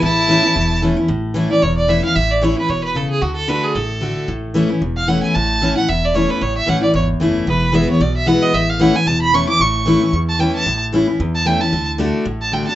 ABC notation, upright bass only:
X:1
M:4/4
L:1/8
Q:"Swing" 1/4=226
K:A
V:1 name="Upright bass" clef=bass
A,,,4 E,,,4 | A,,,4 E,,,4 | A,,,4 E,,,4 | D,,4 A,,,4 |
A,,,4 E,,,4 | A,,,4 E,,,4 | A,,,2 A,,,2 G,,,2 F,,,2 | E,,,4 B,,,4 |
A,,,4 E,,,4 | A,,,4 E,,4 | A,,,4 E,,4 | D,,4 A,,,4 |]